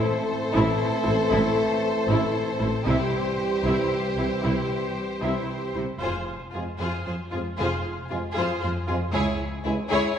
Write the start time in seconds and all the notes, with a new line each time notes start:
Already playing: E3 A3 C4 E4 A4 C5
0.54 A1 A2 E4
1.05 A1 A2 E4
1.31 A1 A2 E4
2.08 A1 A2 E4
2.59 A1 A2 E4
2.85 C2 C3 E3 G3 C4 E4 G4 C5
3.64 C2 C3 E4
4.16 C2 C3 E4
4.43 C2 C3 E4
5.22 C2 C3 E4
5.75 C2 C3 E4
6.01 F1 F2 F4 G#4 C5
6.51 F2 F3 G#3 C4 F4 G#4
6.79 F2 F4 G#4 C5
7.05 F2 F4 G#4 C5
7.30 F2 F3 G#3 C4 F4 G#4
7.58 F1 F2 F4 G#4 C5
8.09 F2 F3 G#3 C4 F4 G#4
8.33 F2 G#4
8.37 F4 C5
8.60 F2 F4 G#4 C5
8.87 F2 F3 G#3 C4 F4 G#4
9.12 C#2 E4 G#4 C#5
9.65 C#2 E3 G#3 C#4 E4 G#4
9.89 C#2 E4 G#4 C#5